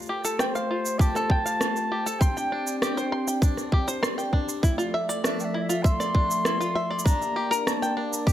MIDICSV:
0, 0, Header, 1, 5, 480
1, 0, Start_track
1, 0, Key_signature, -1, "major"
1, 0, Tempo, 606061
1, 1753, Time_signature, 4, 2, 24, 8
1, 6594, End_track
2, 0, Start_track
2, 0, Title_t, "Flute"
2, 0, Program_c, 0, 73
2, 310, Note_on_c, 0, 72, 93
2, 783, Note_on_c, 0, 81, 118
2, 795, Note_off_c, 0, 72, 0
2, 1736, Note_on_c, 0, 79, 100
2, 1748, Note_off_c, 0, 81, 0
2, 2218, Note_off_c, 0, 79, 0
2, 2222, Note_on_c, 0, 79, 92
2, 2676, Note_off_c, 0, 79, 0
2, 4146, Note_on_c, 0, 76, 93
2, 4281, Note_on_c, 0, 79, 86
2, 4289, Note_off_c, 0, 76, 0
2, 4312, Note_on_c, 0, 76, 93
2, 4320, Note_off_c, 0, 79, 0
2, 4416, Note_on_c, 0, 74, 86
2, 4424, Note_off_c, 0, 76, 0
2, 4447, Note_on_c, 0, 76, 93
2, 4455, Note_off_c, 0, 74, 0
2, 4614, Note_on_c, 0, 84, 124
2, 4626, Note_off_c, 0, 76, 0
2, 5581, Note_on_c, 0, 82, 103
2, 5592, Note_off_c, 0, 84, 0
2, 6028, Note_off_c, 0, 82, 0
2, 6028, Note_on_c, 0, 82, 56
2, 6073, Note_on_c, 0, 81, 88
2, 6085, Note_off_c, 0, 82, 0
2, 6553, Note_off_c, 0, 81, 0
2, 6594, End_track
3, 0, Start_track
3, 0, Title_t, "Five-string banjo"
3, 0, Program_c, 1, 105
3, 73, Note_on_c, 1, 67, 76
3, 187, Note_off_c, 1, 67, 0
3, 195, Note_on_c, 1, 69, 95
3, 302, Note_off_c, 1, 69, 0
3, 317, Note_on_c, 1, 79, 94
3, 429, Note_off_c, 1, 79, 0
3, 438, Note_on_c, 1, 77, 71
3, 543, Note_off_c, 1, 77, 0
3, 559, Note_on_c, 1, 65, 68
3, 784, Note_off_c, 1, 65, 0
3, 795, Note_on_c, 1, 67, 72
3, 908, Note_off_c, 1, 67, 0
3, 919, Note_on_c, 1, 69, 94
3, 1024, Note_off_c, 1, 69, 0
3, 1039, Note_on_c, 1, 79, 95
3, 1150, Note_off_c, 1, 79, 0
3, 1153, Note_on_c, 1, 77, 65
3, 1261, Note_off_c, 1, 77, 0
3, 1276, Note_on_c, 1, 65, 69
3, 1502, Note_off_c, 1, 65, 0
3, 1517, Note_on_c, 1, 67, 75
3, 1629, Note_off_c, 1, 67, 0
3, 1634, Note_on_c, 1, 69, 95
3, 1741, Note_off_c, 1, 69, 0
3, 1754, Note_on_c, 1, 84, 88
3, 1867, Note_off_c, 1, 84, 0
3, 1877, Note_on_c, 1, 79, 68
3, 1983, Note_off_c, 1, 79, 0
3, 1997, Note_on_c, 1, 62, 70
3, 2223, Note_off_c, 1, 62, 0
3, 2236, Note_on_c, 1, 67, 74
3, 2348, Note_off_c, 1, 67, 0
3, 2355, Note_on_c, 1, 72, 95
3, 2462, Note_off_c, 1, 72, 0
3, 2473, Note_on_c, 1, 84, 97
3, 2587, Note_off_c, 1, 84, 0
3, 2595, Note_on_c, 1, 79, 59
3, 2702, Note_off_c, 1, 79, 0
3, 2716, Note_on_c, 1, 62, 69
3, 2942, Note_off_c, 1, 62, 0
3, 2957, Note_on_c, 1, 67, 72
3, 3069, Note_off_c, 1, 67, 0
3, 3071, Note_on_c, 1, 72, 88
3, 3180, Note_off_c, 1, 72, 0
3, 3189, Note_on_c, 1, 84, 93
3, 3305, Note_off_c, 1, 84, 0
3, 3310, Note_on_c, 1, 79, 72
3, 3419, Note_off_c, 1, 79, 0
3, 3429, Note_on_c, 1, 62, 75
3, 3659, Note_off_c, 1, 62, 0
3, 3672, Note_on_c, 1, 64, 72
3, 3783, Note_off_c, 1, 64, 0
3, 3786, Note_on_c, 1, 65, 95
3, 3897, Note_off_c, 1, 65, 0
3, 3912, Note_on_c, 1, 76, 94
3, 4027, Note_off_c, 1, 76, 0
3, 4032, Note_on_c, 1, 74, 79
3, 4140, Note_off_c, 1, 74, 0
3, 4149, Note_on_c, 1, 62, 77
3, 4379, Note_off_c, 1, 62, 0
3, 4390, Note_on_c, 1, 64, 70
3, 4505, Note_off_c, 1, 64, 0
3, 4509, Note_on_c, 1, 65, 84
3, 4619, Note_off_c, 1, 65, 0
3, 4634, Note_on_c, 1, 76, 83
3, 4747, Note_off_c, 1, 76, 0
3, 4751, Note_on_c, 1, 74, 74
3, 4860, Note_off_c, 1, 74, 0
3, 4874, Note_on_c, 1, 62, 68
3, 5102, Note_off_c, 1, 62, 0
3, 5117, Note_on_c, 1, 64, 76
3, 5228, Note_off_c, 1, 64, 0
3, 5232, Note_on_c, 1, 65, 92
3, 5340, Note_off_c, 1, 65, 0
3, 5350, Note_on_c, 1, 76, 101
3, 5465, Note_off_c, 1, 76, 0
3, 5469, Note_on_c, 1, 74, 74
3, 5579, Note_off_c, 1, 74, 0
3, 5588, Note_on_c, 1, 62, 75
3, 5818, Note_off_c, 1, 62, 0
3, 5830, Note_on_c, 1, 67, 73
3, 5945, Note_off_c, 1, 67, 0
3, 5947, Note_on_c, 1, 70, 102
3, 6058, Note_off_c, 1, 70, 0
3, 6075, Note_on_c, 1, 82, 91
3, 6188, Note_off_c, 1, 82, 0
3, 6196, Note_on_c, 1, 79, 74
3, 6303, Note_off_c, 1, 79, 0
3, 6311, Note_on_c, 1, 62, 68
3, 6540, Note_off_c, 1, 62, 0
3, 6547, Note_on_c, 1, 67, 70
3, 6594, Note_off_c, 1, 67, 0
3, 6594, End_track
4, 0, Start_track
4, 0, Title_t, "Analog synth pad"
4, 0, Program_c, 2, 89
4, 0, Note_on_c, 2, 57, 75
4, 0, Note_on_c, 2, 65, 72
4, 0, Note_on_c, 2, 67, 65
4, 0, Note_on_c, 2, 72, 86
4, 1738, Note_off_c, 2, 65, 0
4, 1740, Note_off_c, 2, 57, 0
4, 1740, Note_off_c, 2, 72, 0
4, 1750, Note_on_c, 2, 74, 78
4, 1752, Note_on_c, 2, 62, 75
4, 1753, Note_on_c, 2, 60, 76
4, 3646, Note_off_c, 2, 67, 0
4, 3653, Note_off_c, 2, 60, 0
4, 3653, Note_off_c, 2, 62, 0
4, 3673, Note_on_c, 2, 76, 72
4, 3676, Note_on_c, 2, 57, 75
4, 3678, Note_on_c, 2, 53, 72
4, 5560, Note_off_c, 2, 74, 0
4, 5574, Note_off_c, 2, 76, 0
4, 5575, Note_off_c, 2, 57, 0
4, 5576, Note_off_c, 2, 53, 0
4, 5586, Note_on_c, 2, 74, 86
4, 5588, Note_on_c, 2, 67, 72
4, 5589, Note_on_c, 2, 58, 76
4, 5589, Note_on_c, 2, 62, 76
4, 6594, Note_off_c, 2, 58, 0
4, 6594, Note_off_c, 2, 62, 0
4, 6594, Note_off_c, 2, 67, 0
4, 6594, Note_off_c, 2, 74, 0
4, 6594, End_track
5, 0, Start_track
5, 0, Title_t, "Drums"
5, 15, Note_on_c, 9, 82, 17
5, 45, Note_off_c, 9, 82, 0
5, 45, Note_on_c, 9, 82, 15
5, 125, Note_off_c, 9, 82, 0
5, 195, Note_on_c, 9, 82, 62
5, 274, Note_off_c, 9, 82, 0
5, 311, Note_on_c, 9, 37, 89
5, 317, Note_on_c, 9, 82, 45
5, 390, Note_off_c, 9, 37, 0
5, 396, Note_off_c, 9, 82, 0
5, 439, Note_on_c, 9, 82, 31
5, 518, Note_off_c, 9, 82, 0
5, 677, Note_on_c, 9, 82, 58
5, 756, Note_off_c, 9, 82, 0
5, 787, Note_on_c, 9, 36, 108
5, 800, Note_on_c, 9, 82, 49
5, 866, Note_off_c, 9, 36, 0
5, 879, Note_off_c, 9, 82, 0
5, 913, Note_on_c, 9, 37, 29
5, 918, Note_on_c, 9, 82, 32
5, 992, Note_off_c, 9, 37, 0
5, 997, Note_off_c, 9, 82, 0
5, 1027, Note_on_c, 9, 36, 85
5, 1106, Note_off_c, 9, 36, 0
5, 1159, Note_on_c, 9, 82, 58
5, 1238, Note_off_c, 9, 82, 0
5, 1273, Note_on_c, 9, 37, 87
5, 1278, Note_on_c, 9, 82, 50
5, 1352, Note_off_c, 9, 37, 0
5, 1357, Note_off_c, 9, 82, 0
5, 1397, Note_on_c, 9, 82, 32
5, 1477, Note_off_c, 9, 82, 0
5, 1638, Note_on_c, 9, 82, 58
5, 1717, Note_off_c, 9, 82, 0
5, 1748, Note_on_c, 9, 36, 108
5, 1757, Note_on_c, 9, 82, 52
5, 1827, Note_off_c, 9, 36, 0
5, 1836, Note_off_c, 9, 82, 0
5, 1879, Note_on_c, 9, 82, 30
5, 1958, Note_off_c, 9, 82, 0
5, 2116, Note_on_c, 9, 82, 61
5, 2195, Note_off_c, 9, 82, 0
5, 2234, Note_on_c, 9, 37, 94
5, 2240, Note_on_c, 9, 82, 50
5, 2313, Note_off_c, 9, 37, 0
5, 2319, Note_off_c, 9, 82, 0
5, 2357, Note_on_c, 9, 82, 32
5, 2437, Note_off_c, 9, 82, 0
5, 2596, Note_on_c, 9, 82, 66
5, 2675, Note_off_c, 9, 82, 0
5, 2708, Note_on_c, 9, 36, 118
5, 2714, Note_on_c, 9, 82, 55
5, 2787, Note_off_c, 9, 36, 0
5, 2793, Note_off_c, 9, 82, 0
5, 2831, Note_on_c, 9, 37, 30
5, 2836, Note_on_c, 9, 82, 30
5, 2910, Note_off_c, 9, 37, 0
5, 2915, Note_off_c, 9, 82, 0
5, 2948, Note_on_c, 9, 36, 89
5, 3027, Note_off_c, 9, 36, 0
5, 3075, Note_on_c, 9, 82, 60
5, 3154, Note_off_c, 9, 82, 0
5, 3193, Note_on_c, 9, 37, 92
5, 3199, Note_on_c, 9, 82, 49
5, 3272, Note_off_c, 9, 37, 0
5, 3278, Note_off_c, 9, 82, 0
5, 3317, Note_on_c, 9, 82, 30
5, 3397, Note_off_c, 9, 82, 0
5, 3428, Note_on_c, 9, 36, 59
5, 3507, Note_off_c, 9, 36, 0
5, 3555, Note_on_c, 9, 82, 55
5, 3634, Note_off_c, 9, 82, 0
5, 3667, Note_on_c, 9, 36, 104
5, 3675, Note_on_c, 9, 82, 51
5, 3746, Note_off_c, 9, 36, 0
5, 3754, Note_off_c, 9, 82, 0
5, 3797, Note_on_c, 9, 82, 30
5, 3876, Note_off_c, 9, 82, 0
5, 4036, Note_on_c, 9, 82, 65
5, 4115, Note_off_c, 9, 82, 0
5, 4153, Note_on_c, 9, 37, 86
5, 4158, Note_on_c, 9, 82, 52
5, 4232, Note_off_c, 9, 37, 0
5, 4237, Note_off_c, 9, 82, 0
5, 4276, Note_on_c, 9, 82, 33
5, 4355, Note_off_c, 9, 82, 0
5, 4514, Note_on_c, 9, 82, 65
5, 4593, Note_off_c, 9, 82, 0
5, 4628, Note_on_c, 9, 36, 121
5, 4637, Note_on_c, 9, 82, 53
5, 4707, Note_off_c, 9, 36, 0
5, 4717, Note_off_c, 9, 82, 0
5, 4752, Note_on_c, 9, 37, 30
5, 4758, Note_on_c, 9, 82, 34
5, 4832, Note_off_c, 9, 37, 0
5, 4837, Note_off_c, 9, 82, 0
5, 4868, Note_on_c, 9, 36, 83
5, 4947, Note_off_c, 9, 36, 0
5, 4996, Note_on_c, 9, 82, 61
5, 5075, Note_off_c, 9, 82, 0
5, 5109, Note_on_c, 9, 37, 92
5, 5115, Note_on_c, 9, 82, 51
5, 5189, Note_off_c, 9, 37, 0
5, 5194, Note_off_c, 9, 82, 0
5, 5237, Note_on_c, 9, 82, 34
5, 5317, Note_off_c, 9, 82, 0
5, 5537, Note_on_c, 9, 82, 60
5, 5588, Note_on_c, 9, 36, 105
5, 5598, Note_off_c, 9, 82, 0
5, 5598, Note_on_c, 9, 82, 52
5, 5667, Note_off_c, 9, 36, 0
5, 5677, Note_off_c, 9, 82, 0
5, 5718, Note_on_c, 9, 82, 29
5, 5798, Note_off_c, 9, 82, 0
5, 5960, Note_on_c, 9, 82, 62
5, 6039, Note_off_c, 9, 82, 0
5, 6075, Note_on_c, 9, 37, 82
5, 6081, Note_on_c, 9, 82, 50
5, 6154, Note_off_c, 9, 37, 0
5, 6160, Note_off_c, 9, 82, 0
5, 6200, Note_on_c, 9, 82, 32
5, 6280, Note_off_c, 9, 82, 0
5, 6440, Note_on_c, 9, 82, 66
5, 6520, Note_off_c, 9, 82, 0
5, 6548, Note_on_c, 9, 36, 106
5, 6560, Note_on_c, 9, 82, 52
5, 6594, Note_off_c, 9, 36, 0
5, 6594, Note_off_c, 9, 82, 0
5, 6594, End_track
0, 0, End_of_file